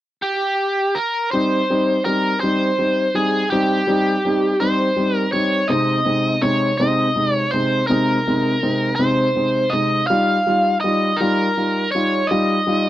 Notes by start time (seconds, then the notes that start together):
0.22 G4
0.95 A#4
1.31 G3 C4 D#4 C5
1.70 G3 C4 D#4
2.05 G3 C4 D#4 A#4
2.40 G3 C4 D#4 C5
2.78 G3 C4 D#4
3.14 G3 C4 D#4 G#4
3.50 G3 C4 D#4 G4
3.87 G3 C4 D#4
4.25 G3 C4 D#4
4.60 G3 C4 D#4 C5
4.97 G3 C4 D#4
5.16 A#4
5.32 G3 C4 D#4 C#5
5.68 C3 G#3 C4 D#4 D#5
6.05 C3 G#3 C4 D#4
6.42 C3 G#3 C4 D#4 C#5
6.78 C3 G#3 C4 D#4 D#5
7.16 C3 G#3 C4 D#4
7.35 C#5
7.51 C3 G#3 C4 D#4 C5
7.87 C3 G#3 C4 D#4 A#4
8.27 C3 G#3 C4 D#4
8.62 C3 G#3 C4 D#4
8.96 C3 G#3 C4 D#4 C5
9.35 C3 G#3 C4 D#4
9.70 C3 G#3 C4 D#4 D#5
10.07 G3 D#4 F4 F5
10.47 G3 D#4 F4
10.81 G3 D#4 F4 D#5
11.17 G3 A#4
11.21 D#4 F4
11.57 G3 D#4 F4
11.92 G3 D#4 C#5
11.96 F4
12.27 G3 D#5
12.31 D#4 F4
12.67 G3 D#4 F4